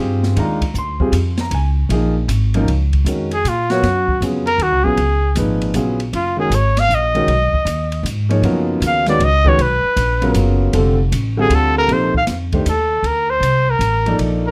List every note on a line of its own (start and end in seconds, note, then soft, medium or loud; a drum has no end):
0.00 0.35 G2 medium
0.00 0.34 C4 medium
0.00 0.35 F4 medium
0.00 0.34 G4 medium
0.00 0.35 G#4 medium
0.23 snare soft
0.36 0.73 D#2 medium
0.36 0.59 D#3 medium
0.36 0.60 G#3 medium
0.36 0.60 D4 medium
0.36 0.60 F4 medium
0.36 0.74 A#5 medium
0.36 ride medium
0.61 kick medium
0.61 ride medium
0.74 1.11 D2 medium
0.74 hi-hat pedal medium
0.79 1.37 C6 medium
1.00 1.12 G3 medium
1.00 1.12 C4 medium
1.00 1.13 F4 medium
1.00 1.13 G#4 medium
1.00 kick medium
1.12 1.50 F2 medium
1.12 hi-hat pedal medium
1.12 ride medium
1.37 1.53 A#5 medium
1.37 snare medium
1.37 ride soft
1.51 1.89 C#2 medium
1.51 1.69 G#5 medium
1.51 ride medium
1.89 2.27 A#1 medium
1.89 2.13 F3 medium
1.89 2.13 A#3 medium
1.89 2.14 D#4 medium
1.89 2.14 G#4 medium
1.89 ride medium
2.28 2.65 G#1 loud
2.28 hi-hat pedal medium
2.28 ride medium
2.54 2.66 F#2 medium
2.54 2.67 F3 medium
2.54 2.67 A#3 medium
2.54 2.67 D#4 medium
2.54 2.67 A#4 medium
2.54 ride medium
2.66 3.04 C#2 medium
2.66 ride medium
2.93 kick medium
2.93 ride soft
3.05 3.43 F2 medium
3.05 3.29 D#3 medium
3.05 3.29 G#3 soft
3.05 3.29 C#4 soft
3.05 3.29 F#4 soft
3.05 3.30 A#4 medium
3.05 hi-hat pedal medium
3.05 ride medium
3.31 3.50 G#4 medium
3.31 ride soft
3.44 3.82 A#2 medium
3.44 hi-hat pedal medium
3.44 ride medium
3.48 3.72 F4 medium
3.70 3.82 F#3 medium
3.70 3.82 B3 medium
3.70 3.82 F4 medium
3.70 4.22 F#4 medium
3.70 3.82 A#4 medium
3.70 3.83 C#5 medium
3.70 snare soft
3.70 ride soft
3.83 4.20 F#2 medium
3.83 snare soft
3.83 ride medium
4.08 kick medium
4.21 4.58 F2 medium
4.21 4.44 C#3 medium
4.21 4.45 F#3 medium
4.21 4.45 B3 medium
4.21 4.45 F4 medium
4.21 4.45 G#4 medium
4.21 hi-hat pedal medium
4.21 ride medium
4.47 4.64 A#4 loud
4.47 ride soft
4.58 4.72 D#2 medium
4.58 4.85 F#4 medium
4.58 ride medium
4.72 4.84 C#2 medium
4.84 4.97 A#1 medium
4.84 4.96 C#3 medium
4.84 4.97 F#3 medium
4.84 4.97 B3 medium
4.84 4.97 F4 medium
4.84 5.36 G#4 medium
4.84 4.97 G#4 medium
4.97 5.35 C#2 medium
4.97 ride medium
5.36 5.73 G#1 medium
5.36 5.74 A#2 medium
5.36 5.74 F3 medium
5.36 5.74 D#4 medium
5.36 5.74 G#4 medium
5.36 5.75 B4 medium
5.36 hi-hat pedal medium
5.36 ride medium
5.62 ride soft
5.74 6.12 A#1 medium
5.74 5.97 C#3 medium
5.74 5.98 F#3 medium
5.74 5.98 B3 medium
5.74 5.98 F4 medium
5.74 5.98 G#4 medium
5.74 hi-hat pedal medium
5.74 ride medium
6.00 ride soft
6.13 6.49 F#1 medium
6.13 6.38 F4 medium
6.13 ride medium
6.36 6.49 D#3 medium
6.36 6.50 G#3 medium
6.36 6.50 C#4 medium
6.36 6.50 F#4 medium
6.36 6.56 G#4 medium
6.36 6.51 A#4 medium
6.50 6.88 G#1 medium
6.50 hi-hat pedal medium
6.50 ride medium
6.55 6.81 C#5 medium
6.77 6.96 F5 loud
6.77 snare soft
6.77 ride medium
6.89 7.27 A#1 medium
6.89 hi-hat pedal medium
6.94 8.08 D#5 medium
7.14 7.27 D#3 medium
7.14 7.27 G#3 medium
7.14 7.27 C#4 medium
7.14 7.28 F#4 medium
7.14 7.28 A#4 medium
7.14 ride soft
7.27 7.51 B1 medium
7.27 ride medium
7.53 muted upright bass stroke soft
7.53 kick medium
7.65 8.03 D#2 medium
7.65 hi-hat pedal medium
7.65 ride medium
7.92 ride soft
8.03 8.42 G#2 medium
8.03 hi-hat pedal medium
8.03 ride medium
8.29 8.79 F3 medium
8.29 8.79 A#3 medium
8.29 8.79 D#4 medium
8.29 8.80 G#4 medium
8.29 8.80 C#5 medium
8.29 ride soft
8.42 8.80 F#2 medium
8.42 9.02 C#3 medium
8.42 9.02 F#3 medium
8.42 9.03 B3 medium
8.42 9.03 F4 medium
8.42 9.03 A#4 medium
8.42 ride medium
8.80 9.19 D#2 medium
8.80 hi-hat pedal medium
8.80 ride medium
8.87 9.08 F5 medium
9.06 9.19 D#3 medium
9.06 9.19 G#3 medium
9.06 9.20 C#4 medium
9.06 9.20 F#4 medium
9.06 9.20 B4 medium
9.06 9.25 D5 medium
9.06 snare soft
9.06 ride soft
9.19 9.57 C#2 medium
9.19 ride medium
9.24 9.50 D#5 loud
9.45 9.57 D#3 medium
9.45 9.57 G#3 medium
9.45 9.58 C#4 medium
9.45 9.58 F#4 medium
9.45 9.58 B4 medium
9.45 9.63 C#5 medium
9.45 kick medium
9.58 9.82 B1 medium
9.58 10.37 B4 medium
9.58 ride medium
9.84 muted upright bass stroke soft
9.96 10.34 A#1 loud
9.96 hi-hat pedal medium
9.96 ride medium
10.22 10.71 C#3 medium
10.22 10.71 F#3 medium
10.22 10.71 B3 medium
10.22 10.72 F4 medium
10.22 10.72 A#4 medium
10.22 ride soft
10.34 10.72 F#1 medium
10.34 hi-hat pedal medium
10.34 ride medium
10.73 11.11 F1 medium
10.73 10.96 D3 medium
10.73 10.97 G3 medium
10.73 10.96 C4 medium
10.73 10.97 F4 medium
10.73 10.97 A4 medium
10.73 ride medium
11.12 11.49 A1 medium
11.12 hi-hat pedal medium
11.12 ride medium
11.37 11.86 D3 medium
11.37 11.87 G3 medium
11.37 11.87 C4 medium
11.37 11.87 F4 medium
11.37 11.56 G#4 loud
11.37 11.87 A4 medium
11.50 11.87 D2 loud
11.50 ride medium
11.55 11.78 A4 medium
11.78 11.94 A#4 loud
11.88 12.26 A#1 medium
11.88 12.12 C3 medium
11.88 12.12 F3 medium
11.88 12.12 A#3 medium
11.88 12.12 D#4 medium
11.88 12.13 A4 medium
11.88 ride medium
11.93 12.16 C5 medium
12.14 12.24 F5 medium
12.14 kick medium
12.27 12.64 F2 medium
12.27 snare soft
12.27 hi-hat pedal medium
12.27 ride medium
12.53 12.65 D#3 medium
12.53 12.65 A3 medium
12.53 12.65 D4 medium
12.53 12.65 G4 medium
12.53 12.66 C5 medium
12.53 kick medium
12.53 ride soft
12.65 13.02 D#2 medium
12.65 13.08 A4 medium
12.65 hi-hat pedal medium
12.65 ride medium
13.03 13.40 D2 medium
13.03 13.31 A#4 medium
13.03 ride medium
13.30 13.72 C5 medium
13.40 13.78 C2 medium
13.40 hi-hat pedal medium
13.40 ride medium
13.70 14.21 A#4 medium
13.79 14.17 A1 medium
13.79 hi-hat pedal medium
13.79 ride medium
14.06 14.51 F3 medium
14.06 14.51 A#3 medium
14.06 14.51 D#4 medium
14.06 14.51 A4 medium
14.06 14.51 D5 medium
14.06 ride soft
14.18 14.51 A#1 medium
14.18 ride medium
14.47 14.51 A#4 medium